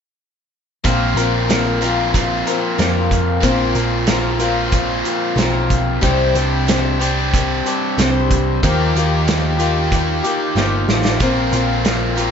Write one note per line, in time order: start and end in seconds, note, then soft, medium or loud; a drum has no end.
0.84 1.14 A#1 medium
0.84 1.83 A#2 medium
0.84 1.82 F3 medium
0.84 1.16 A#3 medium
0.84 1.17 C4 medium
0.84 1.16 F4 medium
0.84 1.15 A#4 medium
0.84 kick loud
0.84 closed hi-hat medium
1.15 2.41 A#1 medium
1.15 1.48 C4 soft
1.15 1.49 F4 soft
1.15 1.49 A#4 medium
1.15 closed hi-hat medium
1.48 1.81 A#3 medium
1.48 1.81 C4 medium
1.48 1.82 F4 medium
1.48 1.82 A#4 medium
1.48 snare medium
1.48 closed hi-hat medium
1.82 3.39 A#2 medium
1.82 3.41 F3 medium
1.82 3.41 A#3 medium
1.82 2.49 C4 soft
1.82 2.47 F4 soft
1.82 2.46 A#4 soft
1.82 closed hi-hat medium
2.14 kick medium
2.14 closed hi-hat medium
2.47 2.78 C4 soft
2.47 2.79 F4 soft
2.47 2.79 A#4 medium
2.47 closed hi-hat medium
2.78 3.40 F2 medium
2.78 3.41 A#3 medium
2.78 3.43 C4 medium
2.78 3.43 F4 medium
2.78 3.43 A#4 medium
2.78 snare medium
2.78 closed hi-hat medium
3.11 kick medium
3.11 closed hi-hat medium
3.41 3.73 A#1 loud
3.41 4.37 A#2 medium
3.41 4.38 F3 medium
3.41 3.75 A#3 medium
3.41 3.76 C4 medium
3.41 3.74 F4 medium
3.41 3.74 A#4 medium
3.41 kick medium
3.41 closed hi-hat medium
3.75 5.01 A#1 medium
3.75 4.08 C4 soft
3.75 4.08 F4 soft
3.75 4.08 A#4 soft
3.75 closed hi-hat medium
4.07 4.40 A#3 medium
4.07 4.40 C4 medium
4.07 4.40 F4 medium
4.07 4.38 A#4 medium
4.07 snare loud
4.07 closed hi-hat medium
4.39 6.01 A#2 medium
4.39 6.01 F3 medium
4.39 6.01 A#3 medium
4.39 5.05 C4 soft
4.39 5.04 F4 medium
4.39 5.03 A#4 medium
4.39 closed hi-hat medium
4.72 kick medium
4.72 closed hi-hat medium
5.04 5.36 C4 soft
5.04 5.36 F4 soft
5.04 5.37 A#4 soft
5.04 closed hi-hat soft
5.36 5.98 B1 medium
5.36 6.02 A#3 medium
5.36 6.01 C4 medium
5.36 6.02 F4 medium
5.36 6.02 A#4 medium
5.36 snare medium
5.36 closed hi-hat medium
5.70 kick medium
5.70 closed hi-hat medium
6.01 6.32 C2 loud
6.01 6.34 C3 medium
6.01 6.35 G3 medium
6.01 6.35 C4 medium
6.01 6.35 D4 medium
6.01 6.99 G4 medium
6.01 6.34 C5 medium
6.01 kick loud
6.01 closed hi-hat medium
6.35 7.60 C2 medium
6.35 6.66 C4 soft
6.35 6.67 D4 soft
6.35 6.67 C5 medium
6.35 closed hi-hat medium
6.67 6.99 G3 medium
6.67 7.00 C4 medium
6.67 7.00 D4 medium
6.67 7.00 C5 medium
6.67 snare loud
6.67 closed hi-hat medium
6.99 8.61 C3 medium
6.99 8.60 G3 medium
6.99 7.66 C4 soft
6.99 7.65 D4 soft
6.99 8.60 G4 medium
6.99 7.64 C5 medium
6.99 closed hi-hat medium
7.34 kick medium
7.34 closed hi-hat medium
7.66 7.97 C4 soft
7.66 7.98 D4 medium
7.66 7.97 C5 medium
7.66 closed hi-hat medium
7.98 8.58 C2 medium
7.98 8.62 G3 medium
7.98 8.62 C4 medium
7.98 8.63 D4 medium
7.98 8.63 C5 medium
7.98 snare loud
7.98 closed hi-hat medium
8.31 kick medium
8.31 closed hi-hat medium
8.63 8.92 D#2 loud
8.63 8.95 D#3 medium
8.63 8.95 F3 medium
8.63 8.95 A#3 medium
8.63 9.58 D#4 medium
8.63 8.95 F4 loud
8.63 8.94 G4 medium
8.63 kick loud
8.63 closed hi-hat medium
8.95 10.20 D#2 medium
8.95 9.27 A#3 soft
8.95 9.27 F4 soft
8.95 9.27 G4 medium
8.95 closed hi-hat medium
9.27 9.59 F3 medium
9.27 9.59 A#3 medium
9.27 9.58 F4 medium
9.27 9.57 G4 medium
9.27 snare loud
9.27 closed hi-hat medium
9.58 11.20 D#3 medium
9.58 10.26 A#3 soft
9.58 11.19 D#4 medium
9.58 10.25 F4 soft
9.58 10.22 G4 medium
9.58 closed hi-hat medium
9.92 kick medium
9.92 closed hi-hat medium
10.24 10.55 A#3 soft
10.24 10.55 F4 soft
10.24 10.56 G4 medium
10.24 closed hi-hat medium
10.55 10.85 G1 medium
10.55 11.20 F3 medium
10.55 11.21 A#3 medium
10.55 11.21 F4 medium
10.55 11.21 G4 medium
10.55 snare medium
10.88 11.17 A1 medium
10.88 snare medium
11.05 snare medium
11.20 11.50 A#1 loud
11.20 12.17 A#2 medium
11.20 12.17 F3 medium
11.20 11.53 A#3 medium
11.20 11.53 C4 medium
11.20 11.52 F4 medium
11.20 11.50 A#4 medium
11.20 kick loud
11.20 closed hi-hat medium
11.51 12.31 A#1 medium
11.51 11.85 C4 soft
11.51 11.85 F4 soft
11.51 11.84 A#4 medium
11.51 closed hi-hat medium
11.85 12.17 A#3 medium
11.85 12.18 C4 medium
11.85 12.17 F4 medium
11.85 12.16 A#4 medium
11.85 snare loud
11.85 closed hi-hat medium
12.17 12.31 A#2 medium
12.17 12.31 F3 medium
12.17 12.31 A#3 medium
12.17 12.31 C4 soft
12.17 12.31 F4 soft
12.17 12.31 A#4 soft
12.17 closed hi-hat medium